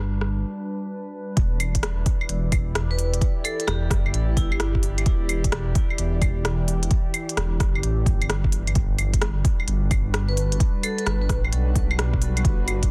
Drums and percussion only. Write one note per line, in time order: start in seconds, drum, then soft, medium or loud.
0.21 cross-stick medium
1.37 kick loud
1.37 closed hi-hat medium
1.60 open hi-hat medium
1.60 claves medium
1.75 kick medium
1.75 closed hi-hat medium
1.83 cross-stick loud
1.83 closed hi-hat medium
2.06 kick loud
2.06 open hi-hat medium
2.21 claves soft
2.29 closed hi-hat medium
2.52 kick loud
2.52 open hi-hat medium
2.52 claves soft
2.75 cross-stick loud
2.75 closed hi-hat medium
2.99 open hi-hat medium
3.14 closed hi-hat medium
3.21 kick loud
3.21 closed hi-hat medium
3.45 open hi-hat medium
3.45 claves medium
3.60 closed hi-hat medium
3.68 cross-stick loud
3.68 closed hi-hat medium
3.91 kick loud
3.91 cross-stick medium
3.91 open hi-hat medium
4.06 claves soft
4.14 closed hi-hat medium
4.37 kick loud
4.37 open hi-hat medium
4.52 claves medium
4.60 cross-stick loud
4.60 closed hi-hat medium
4.75 kick medium
4.83 open hi-hat medium
4.98 closed hi-hat medium
4.98 claves soft
5.06 kick loud
5.06 closed hi-hat medium
5.29 open hi-hat medium
5.29 claves medium
5.44 kick medium
5.44 closed hi-hat medium
5.52 cross-stick loud
5.52 closed hi-hat medium
5.75 kick loud
5.75 open hi-hat medium
5.90 claves soft
5.98 closed hi-hat medium
6.22 kick loud
6.22 open hi-hat medium
6.22 claves soft
6.45 cross-stick loud
6.45 closed hi-hat medium
6.68 open hi-hat medium
6.83 closed hi-hat medium
6.91 kick loud
6.91 closed hi-hat medium
7.14 open hi-hat medium
7.14 claves medium
7.29 closed hi-hat medium
7.37 cross-stick loud
7.37 closed hi-hat medium
7.60 kick loud
7.60 cross-stick medium
7.60 open hi-hat medium
7.75 claves soft
7.83 closed hi-hat medium
8.06 kick loud
8.06 open hi-hat medium
8.22 closed hi-hat soft
8.22 claves medium
8.30 cross-stick loud
8.30 closed hi-hat medium
8.44 kick medium
8.52 open hi-hat medium
8.67 closed hi-hat medium
8.67 claves soft
8.75 kick loud
8.75 closed hi-hat medium
8.99 open hi-hat medium
8.99 claves soft
9.14 kick medium
9.14 closed hi-hat medium
9.22 cross-stick loud
9.22 closed hi-hat medium
9.45 kick loud
9.45 open hi-hat medium
9.60 claves soft
9.68 closed hi-hat medium
9.91 kick loud
9.91 open hi-hat medium
9.91 claves soft
10.14 cross-stick loud
10.14 closed hi-hat medium
10.37 open hi-hat medium
10.52 closed hi-hat medium
10.60 kick loud
10.60 closed hi-hat medium
10.83 open hi-hat medium
10.83 claves medium
10.98 closed hi-hat medium
11.07 cross-stick loud
11.07 closed hi-hat medium
11.29 kick loud
11.29 cross-stick medium
11.29 open hi-hat medium
11.45 claves soft
11.53 closed hi-hat medium
11.75 kick loud
11.75 open hi-hat medium
11.91 claves medium
11.99 cross-stick loud
11.99 closed hi-hat medium
12.14 kick medium
12.22 open hi-hat medium
12.37 closed hi-hat medium
12.37 claves soft
12.45 kick loud
12.45 closed hi-hat medium
12.68 open hi-hat medium
12.68 claves medium
12.83 kick medium
12.83 closed hi-hat medium